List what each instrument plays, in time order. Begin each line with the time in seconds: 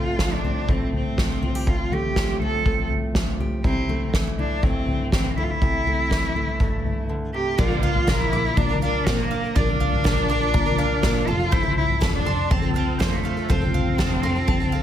Already playing: double bass A1, steel-string acoustic guitar A2 A3 C4, cello F4
0.19 steel-string acoustic guitar F3, kick, snare, floor tom
0.33 cello D4
0.44 steel-string acoustic guitar C4, floor tom
0.68 steel-string acoustic guitar A2 A3, cello C4, kick, floor tom
0.94 cello C4, floor tom
1.18 steel-string acoustic guitar F3, kick, snare, floor tom
1.42 steel-string acoustic guitar F4, floor tom
1.55 steel-string acoustic guitar G4
1.67 steel-string acoustic guitar A2 C4, cello F4, kick, floor tom
1.91 steel-string acoustic guitar A3, cello G4, floor tom
2.16 steel-string acoustic guitar F3, kick, snare, floor tom
2.41 steel-string acoustic guitar C4, cello A4, floor tom
2.65 steel-string acoustic guitar A2 A3, kick, floor tom
2.90 floor tom
3.15 steel-string acoustic guitar F3, kick, snare, floor tom
3.39 steel-string acoustic guitar G4, floor tom
3.64 double bass C2, steel-string acoustic guitar C3 E4, cello C4, kick, floor tom
3.89 steel-string acoustic guitar A3, floor tom
4.13 steel-string acoustic guitar E3, kick, snare, floor tom
4.38 cello D4, steel-string acoustic guitar E4, floor tom
4.62 steel-string acoustic guitar G2 A3, cello C4, kick, floor tom
4.88 floor tom
5.12 steel-string acoustic guitar E3, cello C4, kick, snare, floor tom
5.37 steel-string acoustic guitar A3, cello E4, floor tom
5.43 cello F4
5.50 cello E4
5.62 steel-string acoustic guitar C3 A3, kick, floor tom
5.86 steel-string acoustic guitar A3, floor tom
6.10 steel-string acoustic guitar E3, kick, snare, floor tom
6.36 steel-string acoustic guitar A3, floor tom
6.60 steel-string acoustic guitar G2 A3, kick, floor tom
6.85 floor tom
7.09 steel-string acoustic guitar D3
7.34 steel-string acoustic guitar C3, cello G4
7.58 double bass A#1, twelve-string acoustic guitar A#2 F3 A#3 D4 F4 A#4, cello F4, mandolin D5, kick, floor tom, crash
7.70 twelve-string acoustic guitar A#3 D4 F4 A#4
7.83 cello F4, mandolin F5, floor tom
7.96 floor tom
8.07 double bass A#1, twelve-string acoustic guitar A#2 F3 A#3 D4 F4 A#4, mandolin A#5, kick, snare
8.20 cello E4
8.32 double bass A#1, twelve-string acoustic guitar A#3 D4 F4 A#4, mandolin D6
8.45 twelve-string acoustic guitar A#3 D4 F4 A#4
8.57 double bass A#2, cello D4, mandolin A#5, kick, floor tom
8.69 twelve-string acoustic guitar A#3 D4 F4 A#4
8.81 twelve-string acoustic guitar A#3 D4 F4 A#4, cello D4, mandolin F5
9.06 twelve-string acoustic guitar A#2 F3 A#3 D4 F4 A#4, double bass A#2, cello C4, mandolin D5, kick, snare
9.19 cello A#3, twelve-string acoustic guitar A#3 D4 F4 A#4
9.31 twelve-string acoustic guitar A#3 D4 F4 A#4, mandolin F5
9.44 twelve-string acoustic guitar A#3 D4 F4 A#4
9.55 double bass A#1, twelve-string acoustic guitar A#2 F3 A#3 D4 F4 A#4, cello D4, mandolin D5, kick, floor tom
9.69 twelve-string acoustic guitar A#3 D4 F4 A#4
9.80 mandolin F5, floor tom
9.93 floor tom
10.04 double bass A#1, twelve-string acoustic guitar A#2 F3 A#3 D4 F4 A#4, mandolin A#5, kick, snare
10.28 double bass A#1, twelve-string acoustic guitar A#3 D4 F4 A#4, mandolin D6
10.41 twelve-string acoustic guitar A#3 D4 F4 A#4
10.54 double bass A#2, mandolin A#5, kick, floor tom
10.66 twelve-string acoustic guitar A#3 D4 F4 A#4
10.78 twelve-string acoustic guitar A#3 D4 F4 A#4, mandolin F5
11.03 twelve-string acoustic guitar A#2 F3 A#3 D4 F4 A#4, double bass A#2, mandolin D5, kick, snare
11.27 double bass F1, twelve-string acoustic guitar A3 C4 F4 A4, cello F4, mandolin A5
11.39 twelve-string acoustic guitar C4 F4 A4
11.51 twelve-string acoustic guitar F3 A3 C4 F4 A4, cello E4, mandolin C5, kick, floor tom
11.63 twelve-string acoustic guitar C4 F4 A4
11.77 cello E4, floor tom
11.90 floor tom
12.00 double bass F1, twelve-string acoustic guitar F3 A3 C4 F4 A4, mandolin A5, kick, snare
12.14 cello D4
12.25 double bass F1, twelve-string acoustic guitar A3 C4 F4 A4, mandolin C6
12.51 double bass F2, cello C4, mandolin A5, kick, floor tom
12.62 twelve-string acoustic guitar C4 F4 A4
12.74 twelve-string acoustic guitar A3 C4 F4 A4, cello C4, mandolin F5
12.99 double bass F2, twelve-string acoustic guitar F3 A3 C4 F4 A4, cello A#3, mandolin C5, kick, snare
13.12 cello A3, twelve-string acoustic guitar C4 F4 A4
13.23 twelve-string acoustic guitar A3 C4 F4 A4, mandolin F5
13.37 twelve-string acoustic guitar C4 F4 A4
13.49 double bass F1, twelve-string acoustic guitar F3 A3 C4 F4 A4, cello C4, mandolin C5, kick, floor tom
13.62 twelve-string acoustic guitar C4 F4 A4
13.74 mandolin F5, floor tom
13.87 floor tom
13.98 double bass F1, twelve-string acoustic guitar F3 A3 C4 F4 A4, mandolin A5, kick, snare
14.23 double bass F1, twelve-string acoustic guitar A3 C4 F4 A4, mandolin C6
14.35 twelve-string acoustic guitar C4 F4 A4
14.48 double bass F2, mandolin A5, kick, floor tom
14.60 twelve-string acoustic guitar C4 F4 A4
14.72 twelve-string acoustic guitar A3 C4 F4 A4, mandolin F5